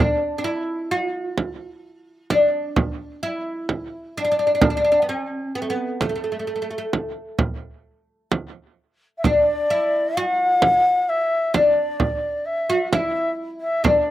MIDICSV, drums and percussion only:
0, 0, Header, 1, 2, 480
1, 0, Start_track
1, 0, Tempo, 923077
1, 2399, Time_signature, 10, 3, 24, 8
1, 7336, End_track
2, 0, Start_track
2, 0, Title_t, "Frame drum"
2, 715, Note_on_c, 9, 64, 56
2, 767, Note_off_c, 9, 64, 0
2, 1197, Note_on_c, 9, 64, 54
2, 1249, Note_off_c, 9, 64, 0
2, 1437, Note_on_c, 9, 64, 65
2, 1489, Note_off_c, 9, 64, 0
2, 1919, Note_on_c, 9, 64, 52
2, 1971, Note_off_c, 9, 64, 0
2, 2400, Note_on_c, 9, 64, 77
2, 2452, Note_off_c, 9, 64, 0
2, 3124, Note_on_c, 9, 64, 59
2, 3176, Note_off_c, 9, 64, 0
2, 3605, Note_on_c, 9, 64, 59
2, 3657, Note_off_c, 9, 64, 0
2, 3841, Note_on_c, 9, 64, 63
2, 3893, Note_off_c, 9, 64, 0
2, 4325, Note_on_c, 9, 64, 60
2, 4377, Note_off_c, 9, 64, 0
2, 4806, Note_on_c, 9, 64, 61
2, 4858, Note_off_c, 9, 64, 0
2, 5523, Note_on_c, 9, 64, 69
2, 5575, Note_off_c, 9, 64, 0
2, 6003, Note_on_c, 9, 64, 61
2, 6055, Note_off_c, 9, 64, 0
2, 6239, Note_on_c, 9, 64, 58
2, 6291, Note_off_c, 9, 64, 0
2, 6722, Note_on_c, 9, 64, 61
2, 6774, Note_off_c, 9, 64, 0
2, 7200, Note_on_c, 9, 64, 65
2, 7252, Note_off_c, 9, 64, 0
2, 7336, End_track
0, 0, End_of_file